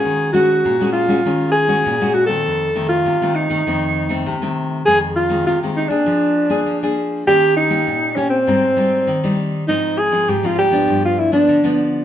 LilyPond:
<<
  \new Staff \with { instrumentName = "Alto saxophone" } { \time 4/4 \key f \phrygian \tempo 4 = 100 aes'8 ges'4 f'4 aes'4 ges'16 a'16~ | a'8. f'8. ees'2 r8 | \key f \minor aes'8 f'8 f'8 ees'16 d'4.~ d'16 r8 | g'8 ees'4 des'16 c'4.~ c'16 r8 |
ees'8 aes'8 g'16 f'16 g'8. f'16 e'16 d'8. r8 | }
  \new Staff \with { instrumentName = "Nylon-string guitar" } { \time 4/4 \key f \phrygian << { <aes des' ges'>8 <aes des' ges'>8. <aes des' ges'>8 <aes des' ges'>16 <aes des'>8. <aes des' ges'>8 <aes des' ges'>8 <ees a c'>16~ | <ees a c'>8 <ees a c'>8. <ees a c'>8 <ees a c'>16 <ees a c'>8. <ees a c'>8 <ees a c'>8. | \key f \minor <ees aes c'>8. <ees aes c'>8 <ees aes c'>8 <bes d' aes'>4 <bes d' aes'>8 <bes d' aes'>8. | <bes des' g'>8. <bes des' g'>8. <bes des' g'>16 r16 <g c' ees'>16 r16 <g c' ees'>8. <g c' ees'>8. |
<f c' ees'>8. <f c' ees'>8 <f c' ees'>8 <f b d'>4 <f b d'>8 <f b d'>8. | } \\ { ees4 bes,4 ees4 bes,4 | f,4 c4 f,4 c4 | f,4 c4 f4 f4 | ees4 bes,4 aes,4 ees4 |
aes,4 aes,4 g,4 d4 | } >> }
>>